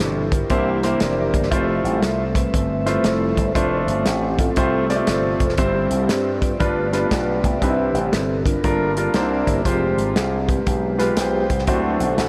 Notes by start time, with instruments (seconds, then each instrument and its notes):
Already playing: slap bass G1, grand piano B2 C3 E4 G4 C5, tonewheel organ E3 G3 D4 E4
0.02 tonewheel organ A4
0.32 tonewheel organ E4 G4 A#4, kick, closed hi-hat
0.50 slap bass C2, grand piano C3 A#3 E4 G4 C5, tonewheel organ E3 A#3 D4, kick, closed hi-hat
0.83 grand piano A#3 E4 G4 C5, snare, closed hi-hat
1.00 slap bass F1, tonewheel organ G4 D5, snare, closed hi-hat
1.05 tonewheel organ A#4
1.33 slap bass G1, kick, closed hi-hat
1.43 snare
1.51 slap bass F1, grand piano A3 E4 F4 C5, tonewheel organ C4 G4, kick, closed hi-hat
1.84 slap bass A1, tonewheel organ G3 A3 E5, closed hi-hat
2.02 slap bass C2, tonewheel organ A4, snare, closed hi-hat
2.35 tonewheel organ C4 B4, kick, closed hi-hat
2.54 slap bass G1, kick, closed hi-hat
2.86 grand piano A3 E4 F4 C5, snare, closed hi-hat
3.04 slap bass F1, tonewheel organ E4 A4 C5, snare, closed hi-hat
3.37 slap bass G1, kick, closed hi-hat
3.55 slap bass F1, tonewheel organ F3 A3 C4 F4 E5, grand piano A3 D4 F4 C5, kick, closed hi-hat
3.87 slap bass G1, closed hi-hat
4.05 slap bass A1, tonewheel organ G4, snare, closed hi-hat
4.39 tonewheel organ C4 F4 A4, kick, closed hi-hat
4.56 slap bass C2, grand piano C3 A3 C4 F4 C5, tonewheel organ A3 C4 F4, kick, closed hi-hat
4.89 grand piano G#3 C4 F4 D5, snare, closed hi-hat
4.96 grand piano A3
5.07 slap bass G1, tonewheel organ F4 A4 C5, snare, closed hi-hat
5.40 slap bass F1, kick, closed hi-hat
5.49 snare
5.58 slap bass G1, grand piano G2 G3 C4 E4 C5, tonewheel organ G3 C4 E4, kick, closed hi-hat
5.75 tonewheel organ G4
5.91 slap bass C2, closed hi-hat
6.00 tonewheel organ A4
6.07 slap bass G2, tonewheel organ G4, snare, closed hi-hat
6.41 tonewheel organ F4 B4 D5, kick, closed hi-hat
6.59 slap bass G1, grand piano G2 G3 D4 F4 B4, tonewheel organ A3 B3 F4, kick, closed hi-hat
6.93 grand piano G3 D4 F4 B4, snare, closed hi-hat
7.11 slap bass B1, tonewheel organ F4 B4 D5, kick, snare, closed hi-hat
7.44 slap bass C2, kick, closed hi-hat
7.61 slap bass C2, grand piano C3 G3 C4 D#4 B4, tonewheel organ C4 D4 E4 G4 B4, kick, closed hi-hat
7.69 grand piano E4
7.94 slap bass A1, closed hi-hat
8.12 slap bass G1, tonewheel organ A4, snare, closed hi-hat
8.45 tonewheel organ D4 F4 A#4, kick, closed hi-hat
8.63 slap bass G1, grand piano G2 G3 D4 F4 A#4, tonewheel organ A#3 F4 A4, kick, closed hi-hat
8.97 grand piano G3 D4 F4 A#4, closed hi-hat
9.14 slap bass C2, grand piano C3 A#3 D4 D#4 C5, tonewheel organ A#3 D4 E4 G4 A#4 D5, snare, closed hi-hat
9.21 grand piano E4
9.47 slap bass G1, kick, closed hi-hat
9.65 slap bass F1, tonewheel organ F3 G#3 C4 F4 G4, grand piano G#3 F4 G4 C5, kick, closed hi-hat
9.97 slap bass G#1, closed hi-hat
10.16 slap bass C2, tonewheel organ G#4, snare, closed hi-hat
10.48 tonewheel organ G#3 G4 B4, kick, closed hi-hat
10.67 slap bass B1, kick, closed hi-hat
10.99 grand piano G#3 F4 G4 B4, snare, closed hi-hat
11.17 slap bass B1, tonewheel organ C5 G5, snare, closed hi-hat
11.50 slap bass C2, kick, closed hi-hat
11.59 snare
11.67 slap bass D2, grand piano D3 A3 D4 F#4 C5, tonewheel organ F#3 C4 E4 F#4 A4 C5, kick, closed hi-hat
12.00 slap bass B1, closed hi-hat
12.17 slap bass A1, tonewheel organ A4 C5 F#5, snare, closed hi-hat